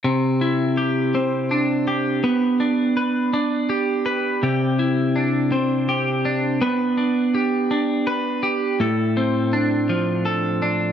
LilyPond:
\new Staff \with { instrumentName = "Clean electric guitar" } { \time 6/8 \key c \major \tempo 4. = 55 c8 e'8 g'8 c'8 d'8 g'8 | b8 d'8 b'8 d'8 g'8 b'8 | <c g'>8 e'8 d'8 c'8 g'8 d'8 | <b b'>8 d'8 g'8 d'8 b'8 g'8 |
<a, a'>8 c'8 d'8 f8 a'8 d'8 | }